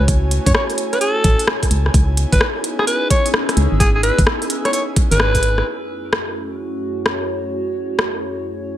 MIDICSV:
0, 0, Header, 1, 6, 480
1, 0, Start_track
1, 0, Tempo, 465116
1, 83, Time_signature, 4, 2, 24, 8
1, 9055, End_track
2, 0, Start_track
2, 0, Title_t, "Alto saxophone"
2, 0, Program_c, 0, 65
2, 477, Note_on_c, 0, 73, 83
2, 532, Note_off_c, 0, 73, 0
2, 564, Note_on_c, 0, 73, 74
2, 663, Note_off_c, 0, 73, 0
2, 958, Note_on_c, 0, 71, 89
2, 1026, Note_off_c, 0, 71, 0
2, 1041, Note_on_c, 0, 69, 90
2, 1522, Note_off_c, 0, 69, 0
2, 2399, Note_on_c, 0, 71, 88
2, 2533, Note_off_c, 0, 71, 0
2, 2882, Note_on_c, 0, 68, 89
2, 2948, Note_off_c, 0, 68, 0
2, 2963, Note_on_c, 0, 71, 90
2, 3197, Note_off_c, 0, 71, 0
2, 3203, Note_on_c, 0, 73, 89
2, 3386, Note_off_c, 0, 73, 0
2, 3921, Note_on_c, 0, 68, 90
2, 4022, Note_off_c, 0, 68, 0
2, 4080, Note_on_c, 0, 68, 73
2, 4133, Note_off_c, 0, 68, 0
2, 4163, Note_on_c, 0, 71, 91
2, 4346, Note_off_c, 0, 71, 0
2, 4800, Note_on_c, 0, 73, 89
2, 4853, Note_off_c, 0, 73, 0
2, 4883, Note_on_c, 0, 73, 74
2, 4983, Note_off_c, 0, 73, 0
2, 5279, Note_on_c, 0, 71, 98
2, 5843, Note_off_c, 0, 71, 0
2, 9055, End_track
3, 0, Start_track
3, 0, Title_t, "Ambient pad"
3, 0, Program_c, 1, 92
3, 0, Note_on_c, 1, 66, 86
3, 0, Note_on_c, 1, 73, 87
3, 1766, Note_on_c, 1, 61, 80
3, 2260, Note_on_c, 1, 68, 70
3, 2524, Note_off_c, 1, 66, 0
3, 2672, Note_off_c, 1, 73, 0
3, 2889, Note_on_c, 1, 88, 79
3, 5844, Note_on_c, 1, 66, 81
3, 5847, Note_off_c, 1, 68, 0
3, 6396, Note_on_c, 1, 73, 77
3, 6620, Note_off_c, 1, 88, 0
3, 6936, Note_off_c, 1, 61, 0
3, 9055, Note_off_c, 1, 66, 0
3, 9055, Note_off_c, 1, 73, 0
3, 9055, End_track
4, 0, Start_track
4, 0, Title_t, "Analog synth pad"
4, 0, Program_c, 2, 89
4, 0, Note_on_c, 2, 57, 82
4, 0, Note_on_c, 2, 61, 75
4, 0, Note_on_c, 2, 64, 74
4, 0, Note_on_c, 2, 80, 93
4, 1721, Note_off_c, 2, 64, 0
4, 1728, Note_off_c, 2, 57, 0
4, 1728, Note_off_c, 2, 61, 0
4, 1764, Note_on_c, 2, 59, 76
4, 1764, Note_on_c, 2, 63, 69
4, 1765, Note_on_c, 2, 64, 73
4, 5802, Note_off_c, 2, 80, 0
4, 5803, Note_off_c, 2, 59, 0
4, 5803, Note_off_c, 2, 63, 0
4, 5803, Note_off_c, 2, 64, 0
4, 5839, Note_on_c, 2, 42, 78
4, 5839, Note_on_c, 2, 57, 69
4, 5839, Note_on_c, 2, 68, 84
4, 5840, Note_on_c, 2, 61, 72
4, 5840, Note_on_c, 2, 64, 73
4, 9055, Note_off_c, 2, 42, 0
4, 9055, Note_off_c, 2, 57, 0
4, 9055, Note_off_c, 2, 61, 0
4, 9055, Note_off_c, 2, 64, 0
4, 9055, Note_off_c, 2, 68, 0
4, 9055, End_track
5, 0, Start_track
5, 0, Title_t, "FM bass"
5, 0, Program_c, 3, 39
5, 0, Note_on_c, 3, 37, 87
5, 407, Note_off_c, 3, 37, 0
5, 480, Note_on_c, 3, 42, 87
5, 539, Note_off_c, 3, 42, 0
5, 1284, Note_on_c, 3, 33, 80
5, 1394, Note_off_c, 3, 33, 0
5, 1763, Note_on_c, 3, 37, 84
5, 1955, Note_off_c, 3, 37, 0
5, 2004, Note_on_c, 3, 37, 96
5, 2328, Note_off_c, 3, 37, 0
5, 2400, Note_on_c, 3, 32, 86
5, 2459, Note_off_c, 3, 32, 0
5, 3683, Note_on_c, 3, 37, 99
5, 3794, Note_off_c, 3, 37, 0
5, 3838, Note_on_c, 3, 32, 86
5, 4247, Note_off_c, 3, 32, 0
5, 4319, Note_on_c, 3, 32, 88
5, 4379, Note_off_c, 3, 32, 0
5, 5279, Note_on_c, 3, 32, 101
5, 5804, Note_off_c, 3, 32, 0
5, 9055, End_track
6, 0, Start_track
6, 0, Title_t, "Drums"
6, 83, Note_on_c, 9, 42, 65
6, 84, Note_on_c, 9, 36, 111
6, 186, Note_off_c, 9, 42, 0
6, 187, Note_off_c, 9, 36, 0
6, 323, Note_on_c, 9, 42, 98
6, 426, Note_off_c, 9, 42, 0
6, 480, Note_on_c, 9, 36, 97
6, 480, Note_on_c, 9, 42, 68
6, 563, Note_on_c, 9, 37, 115
6, 583, Note_off_c, 9, 36, 0
6, 583, Note_off_c, 9, 42, 0
6, 666, Note_off_c, 9, 37, 0
6, 718, Note_on_c, 9, 42, 38
6, 803, Note_off_c, 9, 42, 0
6, 803, Note_on_c, 9, 42, 98
6, 907, Note_off_c, 9, 42, 0
6, 959, Note_on_c, 9, 37, 29
6, 959, Note_on_c, 9, 42, 57
6, 1043, Note_off_c, 9, 42, 0
6, 1043, Note_on_c, 9, 42, 67
6, 1063, Note_off_c, 9, 37, 0
6, 1146, Note_off_c, 9, 42, 0
6, 1282, Note_on_c, 9, 42, 102
6, 1284, Note_on_c, 9, 36, 95
6, 1385, Note_off_c, 9, 42, 0
6, 1387, Note_off_c, 9, 36, 0
6, 1439, Note_on_c, 9, 42, 70
6, 1522, Note_on_c, 9, 37, 114
6, 1542, Note_off_c, 9, 42, 0
6, 1625, Note_off_c, 9, 37, 0
6, 1679, Note_on_c, 9, 36, 59
6, 1679, Note_on_c, 9, 42, 52
6, 1763, Note_off_c, 9, 42, 0
6, 1763, Note_on_c, 9, 42, 101
6, 1783, Note_off_c, 9, 36, 0
6, 1866, Note_off_c, 9, 42, 0
6, 1920, Note_on_c, 9, 37, 54
6, 2004, Note_on_c, 9, 36, 117
6, 2004, Note_on_c, 9, 42, 65
6, 2023, Note_off_c, 9, 37, 0
6, 2107, Note_off_c, 9, 36, 0
6, 2108, Note_off_c, 9, 42, 0
6, 2243, Note_on_c, 9, 42, 108
6, 2346, Note_off_c, 9, 42, 0
6, 2399, Note_on_c, 9, 42, 69
6, 2400, Note_on_c, 9, 36, 96
6, 2484, Note_on_c, 9, 37, 112
6, 2503, Note_off_c, 9, 36, 0
6, 2503, Note_off_c, 9, 42, 0
6, 2587, Note_off_c, 9, 37, 0
6, 2724, Note_on_c, 9, 42, 102
6, 2827, Note_off_c, 9, 42, 0
6, 2881, Note_on_c, 9, 37, 56
6, 2965, Note_on_c, 9, 42, 69
6, 2984, Note_off_c, 9, 37, 0
6, 3068, Note_off_c, 9, 42, 0
6, 3204, Note_on_c, 9, 36, 97
6, 3205, Note_on_c, 9, 42, 110
6, 3307, Note_off_c, 9, 36, 0
6, 3308, Note_off_c, 9, 42, 0
6, 3361, Note_on_c, 9, 42, 72
6, 3444, Note_on_c, 9, 37, 109
6, 3464, Note_off_c, 9, 42, 0
6, 3547, Note_off_c, 9, 37, 0
6, 3600, Note_on_c, 9, 37, 66
6, 3600, Note_on_c, 9, 42, 54
6, 3683, Note_off_c, 9, 42, 0
6, 3683, Note_on_c, 9, 42, 101
6, 3704, Note_off_c, 9, 37, 0
6, 3786, Note_off_c, 9, 42, 0
6, 3923, Note_on_c, 9, 36, 113
6, 3923, Note_on_c, 9, 42, 67
6, 4027, Note_off_c, 9, 36, 0
6, 4027, Note_off_c, 9, 42, 0
6, 4163, Note_on_c, 9, 42, 109
6, 4266, Note_off_c, 9, 42, 0
6, 4319, Note_on_c, 9, 36, 103
6, 4319, Note_on_c, 9, 42, 68
6, 4403, Note_on_c, 9, 37, 113
6, 4422, Note_off_c, 9, 36, 0
6, 4422, Note_off_c, 9, 42, 0
6, 4506, Note_off_c, 9, 37, 0
6, 4559, Note_on_c, 9, 42, 38
6, 4643, Note_off_c, 9, 42, 0
6, 4643, Note_on_c, 9, 42, 108
6, 4746, Note_off_c, 9, 42, 0
6, 4800, Note_on_c, 9, 37, 58
6, 4800, Note_on_c, 9, 42, 60
6, 4883, Note_off_c, 9, 42, 0
6, 4883, Note_on_c, 9, 42, 68
6, 4903, Note_off_c, 9, 37, 0
6, 4987, Note_off_c, 9, 42, 0
6, 5123, Note_on_c, 9, 36, 100
6, 5123, Note_on_c, 9, 42, 111
6, 5226, Note_off_c, 9, 36, 0
6, 5226, Note_off_c, 9, 42, 0
6, 5278, Note_on_c, 9, 42, 65
6, 5362, Note_on_c, 9, 37, 113
6, 5382, Note_off_c, 9, 42, 0
6, 5466, Note_off_c, 9, 37, 0
6, 5518, Note_on_c, 9, 42, 52
6, 5519, Note_on_c, 9, 36, 57
6, 5601, Note_off_c, 9, 42, 0
6, 5601, Note_on_c, 9, 42, 108
6, 5622, Note_off_c, 9, 36, 0
6, 5704, Note_off_c, 9, 42, 0
6, 5758, Note_on_c, 9, 37, 57
6, 5862, Note_off_c, 9, 37, 0
6, 6322, Note_on_c, 9, 37, 105
6, 6425, Note_off_c, 9, 37, 0
6, 7283, Note_on_c, 9, 37, 104
6, 7386, Note_off_c, 9, 37, 0
6, 8242, Note_on_c, 9, 37, 106
6, 8346, Note_off_c, 9, 37, 0
6, 9055, End_track
0, 0, End_of_file